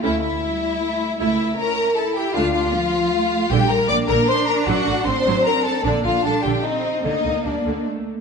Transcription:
<<
  \new Staff \with { instrumentName = "Violin section" } { \time 3/4 \key d \minor \tempo 4 = 154 e''8 e''2~ e''8 | e''4 bes''4 a''8 g''8 | f''8 f''2~ f''8 | \key g \minor g''8 bes''8 d'''8 bes''8 c'''8 bes''8 |
fis''4 c'''4 bes''8 a''8 | d''8 f''8 a''8 g''8 ees''4 | ees''4 d''4 r4 | }
  \new Staff \with { instrumentName = "Violin section" } { \time 3/4 \key d \minor e'8 e'2~ e'8 | e'4 bes'4 a'8 g'8 | f'8 f'2~ f'8 | \key g \minor g'8 bes'8 d''8 bes'8 c''8 bes'8 |
fis'4 c''4 bes'8 a'8 | d'8 f'8 a'8 g'8 ees'4 | ees'4 d'4 r4 | }
  \new Staff \with { instrumentName = "Cello section" } { \time 3/4 \key d \minor a4 g4 a4 | a4 cis'4 e'4 | d'4 f4 a4 | \key g \minor g4 bes4 d'4~ |
d'4 c'2 | bes4 d'4 c'4 | bes2~ bes8 r8 | }
  \new Staff \with { instrumentName = "Viola section" } { \time 3/4 \key d \minor << { cis'8 r2 r8 | e'8 r2 r8 | d'8 r2 r8 | \key g \minor d'2.~ |
d'2. | d'2 c'4 | bes2 a8 r8 | } \\ { a8 r2 r8 | a8 r2 r8 | a8 r2 r8 | d8 g8 bes8 d8 r4 |
fis8 a8 c'8 fis8 r4 | d8 d8 g8 d8 r4 | d8 d8 g8 d8 r4 | } >> }
  \new Staff \with { instrumentName = "Double bass section" } { \clef bass \time 3/4 \key d \minor d,4 r2 | cis,4 r2 | d,4 r2 | \key g \minor bes,,8 bes,,8 bes,,8 bes,,8 r4 |
a,,8 a,,8 a,,8 a,,8 r4 | bes,,8 bes,,8 bes,,8 bes,,8 r4 | d,8 d,8 d,8 d,8 r4 | }
>>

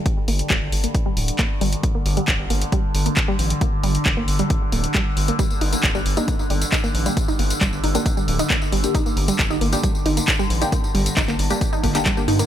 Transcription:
<<
  \new Staff \with { instrumentName = "Synth stab" } { \time 4/4 \key g \minor \tempo 4 = 135 r1 | r1 | r1 | r4. r16 <bes d' g'>16 r4. r16 <bes d' g'>16 |
r4. r16 <bes d' g'>16 r4. r16 <bes d' g'>16 | r4. r16 <bes d' g'>16 r4. r16 <bes d' g'>16 | r4. r16 <bes d' g'>16 r8. <bes d' g'>16 r16 <bes d' g'>16 r8 | }
  \new Staff \with { instrumentName = "Synth arpeggio sound" } { \time 4/4 \key g \minor r8 bes16 r16 g16 r8 bes16 r16 g16 r8 bes16 r16 g16 r16 | r16 bes16 r16 g16 r8 bes16 r16 g16 r8 bes16 r16 g16 r8 | bes16 r16 g16 r8 bes16 r16 g16 r8 bes16 r16 g16 r8 bes16 | g16 r16 ees'16 bes16 r16 g16 r16 ees'16 bes16 r16 g16 r16 ees'16 bes16 r16 g16 |
r16 ees'16 bes16 r16 g16 r16 ees'16 bes16 r16 g16 r16 ees'16 bes16 r16 g16 r16 | ees'16 bes16 r16 g16 r16 ees'16 bes16 r16 g16 r16 ees'16 bes16 r16 g16 r16 ees'16 | bes16 r16 g16 r16 ees'16 bes16 r16 g16 r16 ees'16 bes16 r16 g16 r16 ees'16 bes16 | }
  \new Staff \with { instrumentName = "Synth drone" } { \clef bass \time 4/4 \key g \minor <g, d>1~ | <g, d>1~ | <g, d>1~ | <g, d>1~ |
<g, d>1~ | <g, d>1~ | <g, d>1 | }
  \new Staff \with { instrumentName = "Analog synth bass" } { \clef bass \time 4/4 \key g \minor r8 g,,16 r16 g,,16 g,,16 g,,16 r8. d,,16 r8. g,,16 r16 | r8 g,,16 r16 g,,16 g,,16 g,,16 r8. g,,16 r8. a,,16 r16 | r8 g,,16 r16 g,,16 g,,16 g,,16 r8. d,,16 r8. g,,16 r16 | r8 g,,16 r16 g,,16 g,,16 g,,16 r8. g,,16 r8. a,,16 r16 |
r8 g,,16 r16 g,,16 g,,16 g,,16 r8. d,,16 r8. g,,16 r16 | r8 g,,16 r16 g,,16 g,,16 g,,16 r8. g,,16 r8. a,,16 r16 | r8 g,,16 r16 g,,16 g,,16 g,,16 r8. g,,16 r8. g,16 r16 | }
  \new DrumStaff \with { instrumentName = "Drums" } \drummode { \time 4/4 <hh bd>8 hho16 hh16 <hc hh bd>8 hho16 hh16 <hh bd>8 hho16 hh16 <hc hh bd>8 hho16 hh16 | <hh bd>8 hho16 hh16 <hc hh bd>8 hho16 hh16 <hh bd>8 hho16 hh16 <hc hh bd>8 hho16 hh16 | <hh bd>8 hho16 hh16 <hc hh bd>8 hho16 hh16 <hh bd>8 hho16 hh16 <hc hh bd>8 hho16 hh16 | <hh bd tamb>16 tamb16 hho16 <hh tamb>16 <hc hh bd tamb>16 tamb16 hho16 <hh tamb>16 <hh bd tamb>16 tamb16 hho16 <hh tamb>16 <hc hh bd tamb>16 tamb16 hho16 <hh tamb>16 |
<hh bd tamb>16 tamb16 hho16 <hh tamb>16 <hc hh bd tamb>16 tamb16 hho16 <hh tamb>16 <hh bd tamb>16 tamb16 hho16 <hh tamb>16 <hc hh bd tamb>16 tamb16 hho16 <hh tamb>16 | <hh bd tamb>16 tamb16 hho16 <hh tamb>16 <hc hh bd tamb>16 tamb16 hho16 <hh tamb>16 <hh bd tamb>16 tamb16 hho16 <hh tamb>16 <hc hh bd tamb>16 tamb16 hho16 <hh tamb>16 | <hh bd tamb>16 tamb16 hho16 <hh tamb>16 <hc hh bd tamb>16 <hc tamb>16 hho16 <hh tamb>16 <hh bd tamb>16 tamb16 <hho bd>16 <hc hh tamb>16 <hc hh bd tamb>16 tamb16 hho16 <hh tamb>16 | }
>>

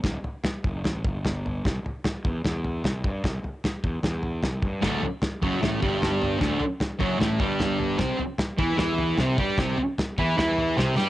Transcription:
<<
  \new Staff \with { instrumentName = "Distorted electric guitar" } { \clef bass \time 4/4 \key c \lydian \tempo 4 = 151 r1 | r1 | r1 | <d, d>8 r4 <fis, fis>8 <a, a>8 <g, g>4. |
<d, d>8 r4 <fis, fis>8 <a, a>8 <g, g>4. | <c c'>8 r4 <e e'>8 <e e'>4 <c c'>8 <g g'>8 | <c c'>8 r4 <e e'>8 <e e'>4 <c c'>8 <g g'>8 | }
  \new Staff \with { instrumentName = "Fingered electric bass" } { \clef bass \time 4/4 \key c \lydian d,,8 r4 fis,,8 a,,8 g,,4. | c,8 r4 e,8 e,4 c,8 g,8 | c,8 r4 e,8 e,4 c,8 g,8 | d,,8 r4 fis,,8 a,,8 g,,4. |
d,,8 r4 fis,,8 a,,8 g,,4. | c,8 r4 e,8 e,4 c,8 g,8 | c,8 r4 e,8 e,4 c,8 g,8 | }
  \new DrumStaff \with { instrumentName = "Drums" } \drummode { \time 4/4 <bd sn tomfh>8 tomfh8 <sn tomfh>8 <bd tomfh>8 <sn tomfh>8 <bd tomfh>8 <sn tomfh>8 tomfh8 | <bd sn tomfh>8 tomfh8 <sn tomfh>8 <bd tomfh>8 <sn tomfh>8 tomfh8 <sn tomfh>8 <bd tomfh>8 | <bd sn tomfh>8 tomfh8 <sn tomfh>8 <bd tomfh>8 <sn tomfh>8 tomfh8 <sn tomfh>8 <bd tomfh>8 | <bd sn tomfh>8 tomfh8 <sn tomfh>8 <bd tomfh>8 <sn tomfh>8 <bd tomfh>8 <sn tomfh>8 tomfh8 |
<bd sn tomfh>8 tomfh8 <sn tomfh>8 <bd tomfh>8 <sn tomfh>8 <bd tomfh>8 <sn tomfh>8 tomfh8 | <bd sn tomfh>8 tomfh8 <sn tomfh>8 <bd tomfh>8 <sn tomfh>8 tomfh8 <sn tomfh>8 <bd tomfh>8 | <bd sn tomfh>8 tomfh8 <sn tomfh>8 <bd tomfh>8 <sn tomfh>8 tomfh8 <sn tomfh>8 sn8 | }
>>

